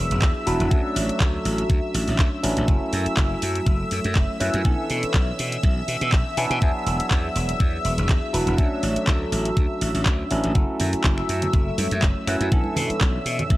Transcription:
Already playing: F#3 B3 D4 E4 G#4 E5 E6
0.11 E1, closed hi-hat
0.22 E2, kick, clap, closed hi-hat
0.46 E1 F#3 B3 D4 E4 B4, open hi-hat
0.60 E1, closed hi-hat
0.70 D2 F#3 A3 C#4 D4 A4, kick, closed hi-hat
0.96 A1, open hi-hat
1.09 muted slap bass stroke, closed hi-hat
1.20 D2, kick, clap, closed hi-hat
1.45 A1, open hi-hat
1.58 closed hi-hat
1.70 D2, kick, closed hi-hat
1.94 A1, open hi-hat
2.08 A1, open hi-hat
2.19 D2, kick, clap, closed hi-hat
2.43 A1 F#3 A3 C#4 D4 B4, open hi-hat
2.57 A1, closed hi-hat
2.67 F#1 F#3 A3 C#4 E4 A4 E5 E6, kick, closed hi-hat
2.93 F#2, open hi-hat
3.06 muted slap bass stroke, closed hi-hat
3.17 F#1, kick, clap, closed hi-hat
3.42 F#2, open hi-hat
3.55 closed hi-hat
3.66 F#1, kick, closed hi-hat
3.91 F#2, open hi-hat
4.04 F#2, closed hi-hat
4.15 F#1, kick, clap, closed hi-hat
4.40 F#2 F#3 A3 C#4 E4 B4, open hi-hat
4.54 F#2, closed hi-hat
4.64 B1 E3 B3 C#4 D4 A4, kick, closed hi-hat
4.90 B2, open hi-hat
5.03 muted slap bass stroke, closed hi-hat
5.14 B1, kick, clap, closed hi-hat
5.39 B2, open hi-hat
5.52 closed hi-hat
5.63 B1, kick, closed hi-hat
5.88 B2, open hi-hat
6.01 B2, closed hi-hat
6.12 B1, kick, clap, closed hi-hat
6.37 B2 E3 B3 C#4 D4 B4, open hi-hat
6.50 B2, closed hi-hat
6.61 E2 F#3 B3 D4 E4 G#4, kick, closed hi-hat
6.86 E1, open hi-hat
7.00 muted slap bass stroke, closed hi-hat
7.11 E2, kick, clap, closed hi-hat
7.36 E1, open hi-hat
7.49 closed hi-hat
7.60 E2, kick, closed hi-hat
7.85 E1, open hi-hat
7.98 E1, closed hi-hat
8.09 E2, kick, clap, closed hi-hat
8.33 E1 F#3 B3 D4 E4 B4, open hi-hat
8.47 E1, closed hi-hat
8.57 D2 F#3 A3 C#4 D4 A4, kick, closed hi-hat
8.83 A1, open hi-hat
8.96 muted slap bass stroke, closed hi-hat
9.07 D2, kick, clap, closed hi-hat
9.32 A1, open hi-hat
9.45 closed hi-hat
9.57 D2, kick, closed hi-hat
9.81 A1, open hi-hat
9.95 A1, open hi-hat
10.06 D2, kick, clap, closed hi-hat
10.30 A1 F#3 A3 C#4 D4 B4, open hi-hat
10.44 A1, closed hi-hat
10.54 F#1 F#3 A3 C#4 E4 A4 E5 E6, kick, closed hi-hat
10.80 F#2, open hi-hat, low conga
10.93 muted slap bass stroke, closed hi-hat
11.04 F#1, kick, clap, closed hi-hat
11.18 finger snap
11.29 F#2, open hi-hat
11.42 closed hi-hat, low conga
11.53 F#1, kick, closed hi-hat
11.78 F#2, open hi-hat, high conga
11.91 F#2, closed hi-hat
12.02 F#1, kick, clap, closed hi-hat
12.27 F#2 F#3 A3 C#4 E4 B4, finger snap, open hi-hat
12.41 F#2, closed hi-hat
12.51 B1 E3 B3 C#4 D4 A4, kick, closed hi-hat
12.64 high conga
12.76 B2, open hi-hat, low conga
12.90 muted slap bass stroke, closed hi-hat, high conga
13.01 B1, kick, clap, closed hi-hat
13.26 B2, open hi-hat
13.39 closed hi-hat, low conga
13.50 B1, kick, closed hi-hat

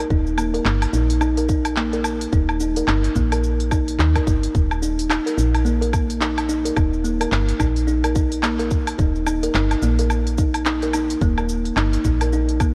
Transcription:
0.10 D#1 D#4, kick, shaker
0.27 shaker
0.38 A#3, low woodblock, shaker
0.54 A#4, open hi-hat, shaker
0.65 G1, clap, shaker
0.82 open hi-hat, low woodblock, shaker
0.93 A#1 D#4, shaker
1.10 open hi-hat, shaker
1.21 D#4, low woodblock, shaker
1.38 A#4, open hi-hat, shaker
1.49 D#4, kick, shaker
1.65 open hi-hat, low woodblock, shaker
1.77 A#3, clap, shaker
1.93 A#4, open hi-hat, shaker
2.04 low woodblock, shaker
2.21 open hi-hat, shaker
2.32 D#1 D#4, kick, shaker
2.49 low woodblock, shaker
2.60 D#4, shaker
2.76 A#4, open hi-hat, shaker
2.88 G1 D#4, clap, low woodblock, shaker
3.04 open hi-hat, shaker
3.16 A#1 A#3, kick, shaker
3.32 A#4, open hi-hat, low woodblock, shaker
3.44 shaker
3.60 open hi-hat, shaker
3.71 D#4, kick, low woodblock, shaker
3.88 open hi-hat, shaker
3.99 D#2 D#4, clap, shaker
4.15 A#4, kick, open hi-hat, low woodblock, shaker
4.27 G1 D#4, kick, shaker
4.43 open hi-hat, shaker
4.55 D#1, kick, shaker
4.71 low woodblock, shaker
4.82 D#4, shaker
4.99 open hi-hat, shaker
5.10 D#4, clap, low woodblock, shaker
5.26 A#4, open hi-hat, shaker
5.37 A#1 D#4, shaker
5.55 open hi-hat, low woodblock, shaker
5.65 A#3, shaker
5.82 A#4, open hi-hat, shaker
5.93 kick, low woodblock, shaker
6.10 open hi-hat, shaker
6.21 D#4, clap, shaker
6.38 open hi-hat, low woodblock, shaker
6.49 D#4, shaker
6.65 A#4, open hi-hat, shaker
6.76 D#1 D#4, kick, low woodblock, shaker
6.93 shaker
7.04 A#3, shaker
7.21 A#4, open hi-hat, low woodblock, shaker
7.32 G1, clap, shaker
7.49 open hi-hat, shaker
7.60 A#1 D#4, kick, low woodblock, shaker
7.76 open hi-hat, shaker
7.87 D#4, shaker
8.04 A#4, open hi-hat, low woodblock, shaker
8.15 D#4, kick, shaker
8.32 open hi-hat, shaker
8.43 A#3, clap, low woodblock, shaker
8.59 A#4, open hi-hat, shaker
8.71 kick, shaker
8.87 open hi-hat, low woodblock, shaker
8.98 D#1 D#4, kick, shaker
9.15 shaker
9.26 D#4, low woodblock, shaker
9.43 A#4, open hi-hat, shaker
9.54 G1 D#4, clap, shaker
9.71 open hi-hat, low woodblock, shaker
9.82 A#1 A#3, shaker
9.99 A#4, open hi-hat, shaker
10.10 low woodblock, shaker
10.27 open hi-hat, shaker
10.38 D#4, kick, shaker
10.54 open hi-hat, low woodblock, shaker
10.65 D#4, clap, shaker
10.82 A#4, open hi-hat, shaker
10.93 D#4, low woodblock, shaker
11.10 open hi-hat, shaker
11.21 D#1 A#3, kick, shaker
11.38 A#4, low woodblock, shaker
11.49 shaker
11.65 open hi-hat, shaker
11.77 G1 D#4, clap, low woodblock, shaker
11.93 open hi-hat, shaker
12.05 A#1 D#4, kick, shaker
12.21 A#4, open hi-hat, low woodblock, shaker
12.33 D#4, shaker
12.49 open hi-hat, shaker
12.60 A#3, kick, low woodblock, shaker

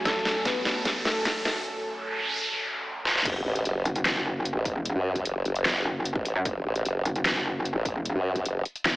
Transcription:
Already playing: F#2 F#3 A3 C#4 F#4 G#5, riser
0.05 A3 A4, kick, snare, closed hi-hat
0.25 snare, closed hi-hat
0.45 B3 B4, kick, snare, closed hi-hat
0.65 snare, closed hi-hat
0.85 kick, snare, closed hi-hat
1.05 A3 A4, snare, closed hi-hat
1.25 kick, snare, closed hi-hat
1.45 snare, open hi-hat
1.65 noise sweep
3.05 snare
3.16 snare
3.25 F#1, kick, closed hi-hat, crash, sub drop
3.45 A1
3.56 closed hi-hat
3.65 F#1, closed hi-hat
3.85 F#1, closed hi-hat
3.96 closed hi-hat
4.05 snare, clap, closed hi-hat
4.25 F#1
4.45 closed hi-hat
4.56 A1
4.65 kick, open hi-hat
4.76 E1
4.85 closed hi-hat
4.96 F#2
5.16 kick, closed hi-hat
5.25 F#1, closed hi-hat
5.45 F#1, closed hi-hat
5.56 closed hi-hat
5.65 snare, clap, closed hi-hat
5.85 F#1
6.05 closed hi-hat
6.16 A1, kick
6.25 open hi-hat
6.36 F#2
6.45 F#1, kick, closed hi-hat
6.65 A1
6.76 closed hi-hat
6.85 F#1, closed hi-hat
7.05 F#1, closed hi-hat
7.16 closed hi-hat
7.25 snare, clap, closed hi-hat
7.45 F#1
7.65 closed hi-hat
7.75 A1
7.85 kick, open hi-hat
7.96 E1
8.05 closed hi-hat
8.16 F#2
8.36 kick, closed hi-hat
8.45 F#1, closed hi-hat
8.65 closed hi-hat
8.76 closed hi-hat
8.85 F#1, snare, clap, closed hi-hat

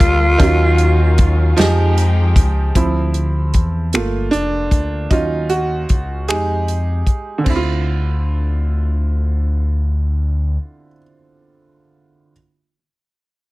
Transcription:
Already playing: G3 A#3 F4 A4 A#4 A5
0.00 D2, kick, closed hi-hat
0.38 D#2 D#3 F#3 C#4 F4, kick, closed hi-hat
0.42 F#3
0.78 closed hi-hat
1.18 kick, closed hi-hat
1.56 F2 F3 G#3 D#4 G4 G5, snare, closed hi-hat
1.61 G#4
1.97 closed hi-hat
2.36 C#2, kick, closed hi-hat
2.75 D2 F3 C4 E4, kick, closed hi-hat
3.14 closed hi-hat
3.54 E2, kick, closed hi-hat
3.93 G1 A3 A#3 F4, finger snap, closed hi-hat
4.31 F1 D4, closed hi-hat
4.71 D2, kick, closed hi-hat
5.10 D#2 F#3 C#4 D#4 F4, kick, closed hi-hat
5.49 F#4, closed hi-hat
5.89 C#2, kick, closed hi-hat
6.28 F2 G#3 D#4 G4 G#4, finger snap, closed hi-hat
6.68 closed hi-hat
7.07 kick, closed hi-hat
7.38 D3
7.44 D2 C4, kick, crash
7.50 E4
7.56 F4

